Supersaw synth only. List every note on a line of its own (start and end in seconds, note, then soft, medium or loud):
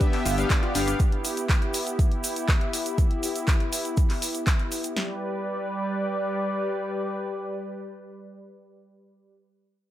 0.01 0.23 B3 medium
0.01 0.23 G4 medium
0.01 0.23 E5 loud
0.26 0.36 B3 medium
0.26 0.36 G4 medium
0.26 0.36 E5 medium
0.38 0.47 B3 medium
0.38 0.47 G4 medium
0.38 0.47 F5 loud
0.50 0.72 B3 medium
0.50 0.72 G4 medium
0.50 0.72 D5 medium
0.75 0.96 B3 medium
0.75 0.96 G4 medium
0.75 0.96 F5 medium